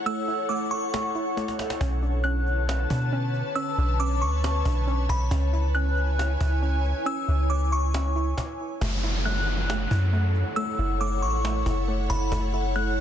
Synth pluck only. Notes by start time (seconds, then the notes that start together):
Already playing: E4
0.06 A3
0.28 E4
0.49 A3
0.93 A3
1.15 E4
1.37 A3
1.81 C#4
2.02 D4
2.24 C#4
2.69 C#4
2.90 D4
3.12 C#4
3.55 C#4
3.78 D4
4.00 C#4
4.43 C#4
4.65 D4
4.87 C#4
5.31 C#4
5.53 E4
5.75 C#4
6.18 C#4
6.41 E4
6.62 C#4
7.06 C#4
7.28 E4
7.50 C#4
7.94 C#4
8.16 E4
8.81 A3
9.04 E4
9.25 A3
9.69 A3
9.91 E4
10.13 A3
10.56 A3
10.79 E4
11.01 A3
11.44 A3
11.66 E4
11.88 A3
12.32 A3
12.53 E4
12.76 A3